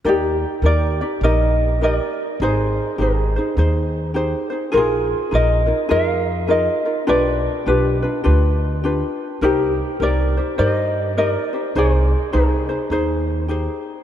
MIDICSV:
0, 0, Header, 1, 4, 480
1, 0, Start_track
1, 0, Key_signature, -3, "major"
1, 0, Tempo, 584226
1, 45, Time_signature, 4, 2, 24, 8
1, 11530, End_track
2, 0, Start_track
2, 0, Title_t, "Ukulele"
2, 0, Program_c, 0, 24
2, 63, Note_on_c, 0, 63, 64
2, 70, Note_on_c, 0, 67, 77
2, 501, Note_off_c, 0, 63, 0
2, 536, Note_off_c, 0, 67, 0
2, 539, Note_on_c, 0, 70, 71
2, 543, Note_on_c, 0, 74, 82
2, 980, Note_off_c, 0, 70, 0
2, 1013, Note_on_c, 0, 70, 67
2, 1018, Note_off_c, 0, 74, 0
2, 1021, Note_on_c, 0, 75, 93
2, 1457, Note_off_c, 0, 70, 0
2, 1506, Note_on_c, 0, 70, 72
2, 1508, Note_off_c, 0, 75, 0
2, 1512, Note_on_c, 0, 75, 75
2, 1602, Note_off_c, 0, 75, 0
2, 1602, Note_on_c, 0, 74, 75
2, 1943, Note_off_c, 0, 70, 0
2, 1990, Note_on_c, 0, 68, 70
2, 1992, Note_off_c, 0, 74, 0
2, 1995, Note_on_c, 0, 72, 77
2, 2426, Note_off_c, 0, 68, 0
2, 2473, Note_off_c, 0, 72, 0
2, 2477, Note_on_c, 0, 63, 59
2, 2483, Note_on_c, 0, 68, 60
2, 3689, Note_off_c, 0, 63, 0
2, 3690, Note_off_c, 0, 68, 0
2, 3903, Note_on_c, 0, 65, 62
2, 3922, Note_on_c, 0, 68, 85
2, 4342, Note_off_c, 0, 65, 0
2, 4382, Note_off_c, 0, 68, 0
2, 4385, Note_on_c, 0, 70, 73
2, 4395, Note_on_c, 0, 75, 95
2, 4824, Note_off_c, 0, 70, 0
2, 4852, Note_off_c, 0, 75, 0
2, 4855, Note_on_c, 0, 77, 90
2, 4859, Note_on_c, 0, 70, 69
2, 5301, Note_off_c, 0, 70, 0
2, 5341, Note_on_c, 0, 70, 62
2, 5343, Note_off_c, 0, 77, 0
2, 5346, Note_on_c, 0, 75, 73
2, 5782, Note_off_c, 0, 70, 0
2, 5823, Note_on_c, 0, 71, 72
2, 5824, Note_off_c, 0, 75, 0
2, 5828, Note_on_c, 0, 74, 87
2, 6263, Note_off_c, 0, 71, 0
2, 6307, Note_on_c, 0, 71, 74
2, 6311, Note_off_c, 0, 74, 0
2, 6318, Note_on_c, 0, 67, 59
2, 7523, Note_off_c, 0, 71, 0
2, 7529, Note_off_c, 0, 67, 0
2, 7745, Note_on_c, 0, 63, 68
2, 7759, Note_on_c, 0, 67, 82
2, 8183, Note_off_c, 0, 63, 0
2, 8231, Note_off_c, 0, 67, 0
2, 8234, Note_on_c, 0, 70, 73
2, 8242, Note_on_c, 0, 74, 89
2, 8668, Note_off_c, 0, 70, 0
2, 8693, Note_on_c, 0, 72, 66
2, 8696, Note_off_c, 0, 74, 0
2, 8700, Note_on_c, 0, 75, 84
2, 9137, Note_off_c, 0, 72, 0
2, 9140, Note_off_c, 0, 75, 0
2, 9184, Note_on_c, 0, 70, 66
2, 9188, Note_on_c, 0, 75, 85
2, 9278, Note_off_c, 0, 75, 0
2, 9278, Note_on_c, 0, 74, 85
2, 9622, Note_off_c, 0, 70, 0
2, 9670, Note_off_c, 0, 74, 0
2, 9678, Note_on_c, 0, 68, 72
2, 9683, Note_on_c, 0, 72, 77
2, 10109, Note_off_c, 0, 68, 0
2, 10132, Note_on_c, 0, 68, 74
2, 10140, Note_on_c, 0, 63, 57
2, 10157, Note_off_c, 0, 72, 0
2, 11352, Note_off_c, 0, 68, 0
2, 11357, Note_off_c, 0, 63, 0
2, 11530, End_track
3, 0, Start_track
3, 0, Title_t, "Ukulele"
3, 0, Program_c, 1, 24
3, 37, Note_on_c, 1, 70, 65
3, 42, Note_on_c, 1, 63, 79
3, 47, Note_on_c, 1, 67, 77
3, 51, Note_on_c, 1, 74, 79
3, 510, Note_off_c, 1, 70, 0
3, 520, Note_on_c, 1, 70, 58
3, 522, Note_off_c, 1, 63, 0
3, 525, Note_on_c, 1, 63, 60
3, 528, Note_off_c, 1, 74, 0
3, 530, Note_off_c, 1, 67, 0
3, 533, Note_on_c, 1, 67, 58
3, 538, Note_on_c, 1, 74, 56
3, 820, Note_off_c, 1, 74, 0
3, 822, Note_off_c, 1, 70, 0
3, 824, Note_off_c, 1, 63, 0
3, 828, Note_off_c, 1, 67, 0
3, 830, Note_on_c, 1, 74, 48
3, 837, Note_on_c, 1, 67, 46
3, 846, Note_on_c, 1, 63, 42
3, 1008, Note_off_c, 1, 74, 0
3, 1011, Note_off_c, 1, 63, 0
3, 1012, Note_off_c, 1, 67, 0
3, 1014, Note_on_c, 1, 70, 69
3, 1021, Note_on_c, 1, 63, 72
3, 1025, Note_on_c, 1, 67, 69
3, 1479, Note_off_c, 1, 70, 0
3, 1486, Note_off_c, 1, 67, 0
3, 1489, Note_on_c, 1, 70, 52
3, 1492, Note_off_c, 1, 63, 0
3, 1495, Note_on_c, 1, 63, 59
3, 1500, Note_on_c, 1, 67, 58
3, 1506, Note_on_c, 1, 74, 61
3, 1967, Note_off_c, 1, 70, 0
3, 1976, Note_off_c, 1, 74, 0
3, 1982, Note_off_c, 1, 63, 0
3, 1985, Note_on_c, 1, 63, 74
3, 1986, Note_on_c, 1, 68, 77
3, 1997, Note_on_c, 1, 72, 80
3, 2011, Note_off_c, 1, 67, 0
3, 2449, Note_off_c, 1, 63, 0
3, 2449, Note_on_c, 1, 67, 55
3, 2453, Note_on_c, 1, 63, 56
3, 2456, Note_off_c, 1, 68, 0
3, 2456, Note_off_c, 1, 72, 0
3, 2459, Note_on_c, 1, 68, 61
3, 2466, Note_on_c, 1, 72, 59
3, 2747, Note_off_c, 1, 67, 0
3, 2748, Note_off_c, 1, 63, 0
3, 2751, Note_off_c, 1, 72, 0
3, 2752, Note_off_c, 1, 68, 0
3, 2761, Note_on_c, 1, 72, 49
3, 2776, Note_on_c, 1, 68, 46
3, 2782, Note_on_c, 1, 63, 42
3, 2929, Note_off_c, 1, 63, 0
3, 2934, Note_off_c, 1, 68, 0
3, 2934, Note_off_c, 1, 72, 0
3, 2939, Note_on_c, 1, 63, 73
3, 2944, Note_on_c, 1, 68, 75
3, 2948, Note_on_c, 1, 72, 78
3, 3403, Note_on_c, 1, 67, 66
3, 3404, Note_off_c, 1, 63, 0
3, 3408, Note_off_c, 1, 72, 0
3, 3408, Note_on_c, 1, 63, 57
3, 3414, Note_off_c, 1, 68, 0
3, 3418, Note_on_c, 1, 68, 65
3, 3418, Note_on_c, 1, 72, 70
3, 3686, Note_off_c, 1, 72, 0
3, 3696, Note_on_c, 1, 72, 52
3, 3703, Note_off_c, 1, 68, 0
3, 3704, Note_off_c, 1, 67, 0
3, 3706, Note_off_c, 1, 63, 0
3, 3713, Note_on_c, 1, 68, 47
3, 3717, Note_on_c, 1, 63, 41
3, 3865, Note_off_c, 1, 68, 0
3, 3871, Note_off_c, 1, 63, 0
3, 3875, Note_on_c, 1, 68, 77
3, 3881, Note_on_c, 1, 63, 81
3, 3882, Note_off_c, 1, 72, 0
3, 3883, Note_on_c, 1, 65, 85
3, 3888, Note_on_c, 1, 70, 89
3, 4353, Note_off_c, 1, 68, 0
3, 4357, Note_off_c, 1, 63, 0
3, 4363, Note_on_c, 1, 68, 52
3, 4366, Note_on_c, 1, 63, 54
3, 4368, Note_off_c, 1, 70, 0
3, 4371, Note_off_c, 1, 65, 0
3, 4375, Note_on_c, 1, 65, 58
3, 4382, Note_on_c, 1, 70, 53
3, 4641, Note_off_c, 1, 70, 0
3, 4648, Note_off_c, 1, 68, 0
3, 4649, Note_off_c, 1, 65, 0
3, 4651, Note_on_c, 1, 70, 49
3, 4656, Note_off_c, 1, 63, 0
3, 4659, Note_on_c, 1, 65, 42
3, 4666, Note_on_c, 1, 63, 40
3, 4827, Note_off_c, 1, 63, 0
3, 4832, Note_off_c, 1, 65, 0
3, 4834, Note_off_c, 1, 70, 0
3, 4837, Note_on_c, 1, 63, 71
3, 4837, Note_on_c, 1, 68, 73
3, 4842, Note_on_c, 1, 65, 80
3, 4850, Note_on_c, 1, 70, 88
3, 5309, Note_off_c, 1, 68, 0
3, 5316, Note_off_c, 1, 63, 0
3, 5319, Note_on_c, 1, 68, 51
3, 5320, Note_off_c, 1, 70, 0
3, 5326, Note_on_c, 1, 63, 56
3, 5329, Note_off_c, 1, 65, 0
3, 5330, Note_on_c, 1, 70, 60
3, 5333, Note_on_c, 1, 65, 59
3, 5621, Note_off_c, 1, 70, 0
3, 5622, Note_off_c, 1, 68, 0
3, 5626, Note_off_c, 1, 63, 0
3, 5626, Note_off_c, 1, 65, 0
3, 5631, Note_on_c, 1, 70, 44
3, 5636, Note_on_c, 1, 65, 40
3, 5643, Note_on_c, 1, 63, 41
3, 5800, Note_off_c, 1, 65, 0
3, 5804, Note_off_c, 1, 70, 0
3, 5806, Note_off_c, 1, 63, 0
3, 5808, Note_on_c, 1, 67, 70
3, 5809, Note_on_c, 1, 62, 71
3, 5810, Note_on_c, 1, 65, 80
3, 5816, Note_on_c, 1, 71, 79
3, 6289, Note_off_c, 1, 62, 0
3, 6289, Note_off_c, 1, 65, 0
3, 6289, Note_off_c, 1, 67, 0
3, 6292, Note_off_c, 1, 71, 0
3, 6292, Note_on_c, 1, 67, 50
3, 6299, Note_on_c, 1, 62, 53
3, 6303, Note_on_c, 1, 65, 56
3, 6303, Note_on_c, 1, 71, 58
3, 6583, Note_off_c, 1, 71, 0
3, 6589, Note_off_c, 1, 67, 0
3, 6592, Note_off_c, 1, 62, 0
3, 6593, Note_on_c, 1, 71, 50
3, 6594, Note_off_c, 1, 65, 0
3, 6604, Note_on_c, 1, 65, 43
3, 6606, Note_on_c, 1, 62, 43
3, 6761, Note_off_c, 1, 62, 0
3, 6762, Note_off_c, 1, 65, 0
3, 6767, Note_on_c, 1, 67, 74
3, 6768, Note_off_c, 1, 71, 0
3, 6771, Note_on_c, 1, 62, 72
3, 6772, Note_on_c, 1, 65, 69
3, 6778, Note_on_c, 1, 71, 81
3, 7249, Note_off_c, 1, 62, 0
3, 7250, Note_off_c, 1, 65, 0
3, 7253, Note_off_c, 1, 71, 0
3, 7256, Note_off_c, 1, 67, 0
3, 7260, Note_on_c, 1, 67, 62
3, 7266, Note_on_c, 1, 62, 58
3, 7269, Note_on_c, 1, 65, 61
3, 7275, Note_on_c, 1, 71, 69
3, 7736, Note_off_c, 1, 67, 0
3, 7737, Note_off_c, 1, 62, 0
3, 7738, Note_off_c, 1, 65, 0
3, 7740, Note_on_c, 1, 70, 73
3, 7741, Note_off_c, 1, 71, 0
3, 7745, Note_on_c, 1, 63, 74
3, 7747, Note_on_c, 1, 67, 79
3, 7752, Note_on_c, 1, 72, 74
3, 8205, Note_off_c, 1, 70, 0
3, 8215, Note_on_c, 1, 70, 55
3, 8222, Note_off_c, 1, 63, 0
3, 8225, Note_on_c, 1, 63, 53
3, 8227, Note_off_c, 1, 67, 0
3, 8231, Note_on_c, 1, 67, 55
3, 8233, Note_off_c, 1, 72, 0
3, 8236, Note_on_c, 1, 72, 57
3, 8510, Note_off_c, 1, 70, 0
3, 8511, Note_off_c, 1, 72, 0
3, 8515, Note_off_c, 1, 63, 0
3, 8518, Note_off_c, 1, 67, 0
3, 8521, Note_on_c, 1, 72, 44
3, 8529, Note_on_c, 1, 67, 41
3, 8539, Note_on_c, 1, 63, 38
3, 8688, Note_off_c, 1, 63, 0
3, 8693, Note_off_c, 1, 67, 0
3, 8693, Note_off_c, 1, 72, 0
3, 8698, Note_on_c, 1, 63, 74
3, 8698, Note_on_c, 1, 70, 71
3, 8702, Note_on_c, 1, 72, 76
3, 8703, Note_on_c, 1, 67, 76
3, 9172, Note_off_c, 1, 70, 0
3, 9180, Note_on_c, 1, 70, 58
3, 9181, Note_off_c, 1, 63, 0
3, 9184, Note_on_c, 1, 63, 58
3, 9190, Note_off_c, 1, 67, 0
3, 9192, Note_off_c, 1, 72, 0
3, 9193, Note_on_c, 1, 67, 59
3, 9195, Note_on_c, 1, 72, 59
3, 9462, Note_off_c, 1, 72, 0
3, 9471, Note_off_c, 1, 67, 0
3, 9472, Note_off_c, 1, 70, 0
3, 9472, Note_on_c, 1, 72, 43
3, 9474, Note_off_c, 1, 63, 0
3, 9481, Note_on_c, 1, 67, 38
3, 9494, Note_on_c, 1, 63, 38
3, 9649, Note_off_c, 1, 72, 0
3, 9650, Note_off_c, 1, 63, 0
3, 9654, Note_off_c, 1, 67, 0
3, 9660, Note_on_c, 1, 63, 76
3, 9661, Note_on_c, 1, 68, 73
3, 9666, Note_on_c, 1, 72, 81
3, 10120, Note_off_c, 1, 63, 0
3, 10125, Note_on_c, 1, 67, 53
3, 10127, Note_off_c, 1, 72, 0
3, 10130, Note_on_c, 1, 63, 61
3, 10132, Note_off_c, 1, 68, 0
3, 10135, Note_on_c, 1, 68, 56
3, 10137, Note_on_c, 1, 72, 61
3, 10415, Note_off_c, 1, 72, 0
3, 10422, Note_off_c, 1, 68, 0
3, 10424, Note_off_c, 1, 67, 0
3, 10425, Note_on_c, 1, 72, 54
3, 10426, Note_off_c, 1, 63, 0
3, 10432, Note_on_c, 1, 68, 44
3, 10439, Note_on_c, 1, 63, 41
3, 10599, Note_off_c, 1, 63, 0
3, 10604, Note_off_c, 1, 68, 0
3, 10605, Note_off_c, 1, 72, 0
3, 10609, Note_on_c, 1, 63, 72
3, 10614, Note_on_c, 1, 68, 73
3, 10619, Note_on_c, 1, 72, 80
3, 11075, Note_off_c, 1, 63, 0
3, 11078, Note_on_c, 1, 67, 54
3, 11085, Note_on_c, 1, 63, 70
3, 11089, Note_off_c, 1, 68, 0
3, 11091, Note_off_c, 1, 72, 0
3, 11092, Note_on_c, 1, 68, 70
3, 11099, Note_on_c, 1, 72, 63
3, 11530, Note_off_c, 1, 63, 0
3, 11530, Note_off_c, 1, 67, 0
3, 11530, Note_off_c, 1, 68, 0
3, 11530, Note_off_c, 1, 72, 0
3, 11530, End_track
4, 0, Start_track
4, 0, Title_t, "Upright bass"
4, 0, Program_c, 2, 32
4, 41, Note_on_c, 2, 39, 81
4, 354, Note_off_c, 2, 39, 0
4, 509, Note_on_c, 2, 39, 83
4, 826, Note_off_c, 2, 39, 0
4, 995, Note_on_c, 2, 34, 81
4, 1622, Note_off_c, 2, 34, 0
4, 1971, Note_on_c, 2, 32, 84
4, 2282, Note_off_c, 2, 32, 0
4, 2451, Note_on_c, 2, 32, 80
4, 2762, Note_off_c, 2, 32, 0
4, 2931, Note_on_c, 2, 39, 81
4, 3554, Note_off_c, 2, 39, 0
4, 3895, Note_on_c, 2, 34, 84
4, 4205, Note_off_c, 2, 34, 0
4, 4374, Note_on_c, 2, 34, 80
4, 4684, Note_off_c, 2, 34, 0
4, 4855, Note_on_c, 2, 41, 81
4, 5476, Note_off_c, 2, 41, 0
4, 5821, Note_on_c, 2, 35, 80
4, 6129, Note_off_c, 2, 35, 0
4, 6298, Note_on_c, 2, 35, 80
4, 6606, Note_off_c, 2, 35, 0
4, 6784, Note_on_c, 2, 38, 80
4, 7403, Note_off_c, 2, 38, 0
4, 7734, Note_on_c, 2, 36, 81
4, 8044, Note_off_c, 2, 36, 0
4, 8215, Note_on_c, 2, 36, 77
4, 8524, Note_off_c, 2, 36, 0
4, 8701, Note_on_c, 2, 43, 80
4, 9320, Note_off_c, 2, 43, 0
4, 9657, Note_on_c, 2, 36, 86
4, 9965, Note_off_c, 2, 36, 0
4, 10136, Note_on_c, 2, 36, 81
4, 10444, Note_off_c, 2, 36, 0
4, 10599, Note_on_c, 2, 39, 78
4, 11224, Note_off_c, 2, 39, 0
4, 11530, End_track
0, 0, End_of_file